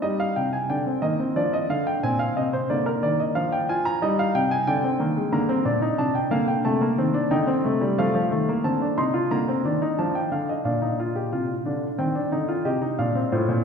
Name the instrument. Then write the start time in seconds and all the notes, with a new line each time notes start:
grand piano
0.02 G3 D#4 D#5
0.20 F5
0.36 C3 G5
0.53 G#5
0.69 D3 D4 G5
0.86 C4
1.02 D#3 A#3 D#5
1.20 C4
1.36 F3 D4 D5
1.53 D#5
1.70 D3 F5
1.87 G5
2.03 A#2 C4 G#5
2.19 F5
2.37 C3 D#5
2.53 C5
2.70 D3 A#3 D5
2.86 A#4
3.03 D#3 D5
3.20 D#5
3.35 F3 D4 F5
3.52 G5
3.69 F4 G#5
3.85 A#5
4.02 G3 D#4 D#5
4.19 F5
4.35 C3 G5
4.51 G#5
4.67 D3 D4 G5
4.84 C4
5.00 D#3 A#3
5.17 G#3
5.32 D3 A#3 A#5
5.49 C4
5.65 A#2 D4
5.82 D#4
5.98 C3 D4 A5
6.15 G5
6.31 D3 A#3 F5
6.48 G5
6.65 C3 A3 A5
6.81 A#3
6.98 D#3 C4
7.14 D4
7.31 D3 D#4 G5
7.47 C4
7.65 C3 A3
7.81 G3
7.98 F3 A3 F5
8.15 F3
8.31 D#3 A3
8.49 A#3
8.64 D3 C4 A5
8.82 D4
8.98 C3 D#4 C6
9.14 F4
9.31 D3 A#3 A#5
9.48 C4
9.65 D#3 D4
9.82 D#4
9.98 F3 D4 A5
10.15 G5
10.32 D3 F5
10.49 D#5
10.65 A#2 D4 F5
10.82 D#4
11.00 F4
11.16 G4
11.32 C3 F4
11.66 D3 D4
11.98 D#3 C4 G5
12.15 D4
12.32 D3 D#4
12.48 F4
12.65 C3 G4 D#5
12.81 D#4
12.99 A#2 D4 F5
13.15 C4
13.32 A2 F4 C5
13.49 A#2